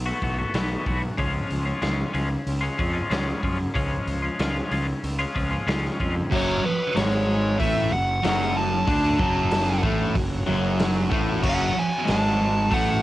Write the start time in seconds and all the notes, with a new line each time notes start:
Already playing: B1
0.06 A3 B3 F#4
0.22 B1 E3 A3 B3 F#4, kick, open hi-hat
0.39 A3 B3 F#4
0.54 B1 B2 E3 A3 B3 F#4, snare, open hi-hat
0.86 B1 E3 A3 B3 F#4, kick, open hi-hat
1.03 muted clean electric guitar stroke
1.18 C#2 C#3 F3 G#3 C#4 F4, kick, open hi-hat
1.50 C#2, open hi-hat
1.65 G#3 C#4 F4
1.82 C#2 C#3 F3 G#3 C#4 F4, snare, open hi-hat
2.13 C#2 F3 G#3 C#4 F4, open hi-hat
2.30 muted clean electric guitar stroke
2.47 C#2, open hi-hat
2.61 G#3 C#4 F4
2.78 F2 F3 G#3 C#4 F4, kick, open hi-hat
2.93 G#3 C#4 F4
3.10 C#2 C#3 F3 G#3 C#4 F4, snare, open hi-hat
3.43 F#2 F3 G#3 C#4 F4, kick, open hi-hat
3.59 muted clean electric guitar stroke
3.74 C#2 C#3 F3 G#3 C#4 F4, kick, open hi-hat
4.07 C#2, open hi-hat
4.22 G#3 C#4 F4
4.39 C#2 C#3 F3 G#3 C#4 F4, snare, open hi-hat
4.71 C#2 F3 G#3 C#4 F4, open hi-hat
4.88 muted clean electric guitar stroke
5.03 C#2, open hi-hat
5.19 G#3 C#4 F4
5.34 C#2 F3 G#3 C#4 F4, kick, open hi-hat
5.51 G#3 C#4 F4
5.66 C#2 C#3 F3 G#3 C#4 F4, snare, open hi-hat
5.85 snare
6.00 F2 F3 G#3 C#4 F4, kick, open hi-hat
6.16 muted clean electric guitar stroke
6.32 F#1 F#2 F#3 F#4 C#5 F#5, kick, crash
6.36 C#5
6.62 B4, muted distorted electric guitar stroke, muted overdriven electric guitar stroke, muted fingered electric bass stroke
6.95 G#1 G#2 G#3 C#5, snare, open hi-hat
7.58 A1 A2 A3 E5, kick, open hi-hat
7.92 F#1 F#2 F#5
8.24 F#1 F#2 F#3 F#5, snare, open hi-hat
8.57 A5
8.86 D2 D3 D4, kick, open hi-hat
9.19 F#1 F#2 F#3, kick
9.51 snare, open hi-hat
9.82 A1 A2 A3, kick
10.15 F#1 F#2, kick, open hi-hat
10.46 F#1 F#2 F#3
10.79 snare, open hi-hat
11.10 A1 A2 A3, kick
11.42 F#1 F#2 F#3, kick, crash
11.49 F#5
11.75 G#5, muted distorted electric guitar stroke, muted overdriven electric guitar stroke, muted fingered electric bass stroke
12.05 G#1 G#2 G#3, snare, open hi-hat
12.11 A5
12.70 A1 A2 A3 F#5, kick, open hi-hat